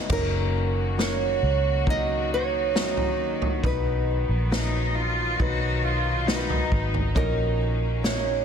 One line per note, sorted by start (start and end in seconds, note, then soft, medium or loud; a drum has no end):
0.00 0.11 F#3 loud
0.00 0.12 B3 medium
0.00 0.12 D#4 medium
0.00 0.12 F#4 medium
0.00 0.12 G#4 loud
0.00 0.31 B4 medium
0.00 0.12 D#5 medium
0.00 0.12 F#5 medium
0.00 0.12 G#5 medium
0.00 0.12 A#5 medium
0.10 1.38 F#1 loud
0.10 8.45 D#3 medium
0.10 0.95 F#3 medium
0.10 3.59 A#3 medium
0.10 0.95 A#3 medium
0.10 1.85 C#4 medium
0.10 0.95 C#4 medium
0.10 0.95 D#4 medium
0.10 3.60 F#4 medium
0.10 0.95 A#4 loud
0.10 1.01 A#4 loud
0.10 kick loud
0.10 floor tom loud
0.10 crash medium
0.98 1.82 F#3 medium
0.98 1.82 A#3 medium
0.98 1.82 C#4 medium
0.98 1.82 D#4 medium
0.98 1.83 A#4 medium
0.98 1.90 C#5 loud
0.98 snare loud
1.43 3.19 C#2 medium
1.87 2.70 F#3 medium
1.87 2.70 A#3 medium
1.87 2.71 C#4 medium
1.87 3.61 D#4 medium
1.87 2.71 D#4 medium
1.87 2.71 F#4 medium
1.87 2.30 D#5 loud
1.87 kick medium
1.87 floor tom medium
2.34 3.66 C#5 medium
2.75 3.59 F#3 medium
2.75 3.59 A#3 medium
2.75 3.59 C#4 medium
2.75 3.59 D#4 medium
2.75 3.59 F#4 medium
2.75 snare loud
2.97 floor tom medium
3.19 3.60 A#1 medium
3.42 floor tom medium
3.63 4.26 B1 loud
3.63 7.12 F#3 medium
3.63 5.38 B3 medium
3.63 4.92 B3 medium
3.63 8.45 D#4 medium
3.63 4.47 D#4 loud
3.63 4.47 F#4 medium
3.63 4.47 B4 loud
3.63 5.37 B4 medium
3.63 kick loud
3.63 floor tom loud
4.29 5.35 A#1 medium
4.51 5.36 F#3 medium
4.51 5.35 D#4 medium
4.51 4.92 D#4 medium
4.51 5.36 B4 medium
4.51 snare loud
4.95 5.39 F4 loud
5.39 6.68 B1 loud
5.39 7.14 A#2 medium
5.39 6.24 F#3 medium
5.39 6.23 D#4 medium
5.39 5.83 F#4 loud
5.39 6.24 B4 loud
5.39 kick medium
5.39 floor tom medium
5.83 6.27 F4 loud
6.27 7.11 D#4 loud
6.27 6.94 D#4 loud
6.27 7.11 F#4 medium
6.27 6.35 A#4 medium
6.27 snare loud
6.35 7.15 B4 loud
6.50 floor tom medium
6.72 7.13 G#1 medium
6.72 kick medium
6.94 floor tom medium
7.15 8.44 A#1 loud
7.15 8.44 A#2 medium
7.15 8.45 A#3 medium
7.15 8.45 C#4 medium
7.15 7.99 C#4 loud
7.15 7.99 D#4 medium
7.15 8.00 F#4 medium
7.15 8.00 A#4 medium
7.15 8.05 A#4 loud
7.15 8.00 D#5 loud
7.15 kick loud
7.15 floor tom loud
8.03 8.45 C#4 medium
8.03 8.45 D#4 medium
8.03 8.45 F#4 medium
8.03 8.45 A#4 medium
8.03 8.11 C#5 medium
8.03 8.45 C#5 medium
8.03 snare loud
8.11 8.45 D#5 medium